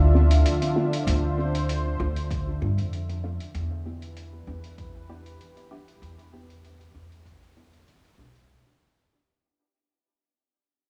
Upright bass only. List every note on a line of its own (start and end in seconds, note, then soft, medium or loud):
0.00 0.42 D2 medium
1.07 1.97 D2 medium
2.00 2.61 D2 medium
2.62 2.76 G2 medium
2.78 3.37 F2 medium
3.54 4.44 E2 medium
4.47 5.37 E2 medium
6.02 6.92 E2 medium
6.95 7.85 E2 medium
8.18 8.46 B1 medium